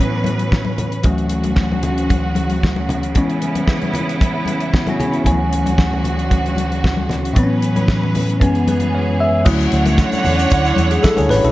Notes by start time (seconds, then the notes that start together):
Already playing: A2 E3 F#3 B3 C#4 B4
0.01 closed hi-hat
0.24 closed hi-hat, high conga
0.39 closed hi-hat
0.52 kick, snare
0.65 high conga
0.78 closed hi-hat, muted conga, low conga
0.92 closed hi-hat
1.03 D2 C#3 E3 F#3 A3 C#4 F#4, kick, closed hi-hat, muted conga
1.18 closed hi-hat
1.29 closed hi-hat, muted conga
1.44 closed hi-hat, high conga
1.56 kick, snare
1.72 high conga
1.83 closed hi-hat, muted conga, low conga
1.98 closed hi-hat
2.09 kick, closed hi-hat, muted conga, high conga
2.35 closed hi-hat, muted conga, high conga
2.50 closed hi-hat
2.63 kick, snare
2.76 high conga
2.89 closed hi-hat, low conga
3.03 closed hi-hat
3.15 E3 G#3 B3 C#4 E4, kick, closed hi-hat, muted conga
3.30 closed hi-hat
3.42 closed hi-hat, muted conga
3.55 closed hi-hat, high conga
3.68 kick, snare
3.82 closed hi-hat, high conga
3.94 closed hi-hat, muted conga, low conga
4.09 closed hi-hat
4.20 kick, closed hi-hat, muted conga, high conga
4.46 closed hi-hat, high conga
4.60 closed hi-hat
4.73 B3 E4, kick, snare, muted conga
4.87 C#4 F#4, closed hi-hat, high conga
5.00 C#4 G#4, closed hi-hat, muted conga, low conga
5.12 B3 E4, closed hi-hat
5.24 D2 E3 F3 A3 C#4 F#4, kick, closed hi-hat, muted conga
5.28 D2 F#3
5.53 closed hi-hat, muted conga
5.66 closed hi-hat, high conga
5.78 kick, snare
5.93 high conga
6.04 closed hi-hat, low conga
6.19 closed hi-hat
6.30 kick, closed hi-hat, high conga
6.46 closed hi-hat
6.56 closed hi-hat, high conga
6.72 closed hi-hat
6.84 kick, snare
6.97 high conga
7.09 snare, closed hi-hat, low conga
7.25 closed hi-hat
7.33 A2 E3 F#3 B3 C4 C#4 B4, kick, closed hi-hat
7.43 C#4
7.62 closed hi-hat
7.76 closed hi-hat, high conga
7.88 kick, snare, muted conga
8.03 high conga
8.15 open hi-hat, muted conga, low conga
8.30 closed hi-hat
8.40 F#2 E3 G#3 B3 C#4 G#4, kick, closed hi-hat, high conga
8.55 closed hi-hat
8.68 B4, closed hi-hat, muted conga, high conga
8.80 closed hi-hat
8.95 C#5
9.20 E5
9.45 D2 D3 F#3 A3 C#4 E4 C#5 F#5, kick, crash, muted conga, shaker
9.61 shaker
9.72 D2, closed hi-hat, shaker
9.86 closed hi-hat, high conga, shaker
9.98 kick, snare, shaker
10.12 closed hi-hat, high conga, shaker
10.25 E2, open hi-hat, muted conga, low conga, shaker
10.39 closed hi-hat, shaker
10.50 D2, kick, closed hi-hat, shaker
10.65 shaker
10.76 E2, closed hi-hat, muted conga, high conga, shaker
10.91 D4 G#4, closed hi-hat, shaker
11.03 E4 A4, kick, snare, muted conga, shaker
11.17 D2 G#4 C#5, closed hi-hat, high conga, shaker
11.29 A1 F#4 B4, snare, open hi-hat, muted conga, low conga, shaker
11.44 B1 E4 A4, closed hi-hat, shaker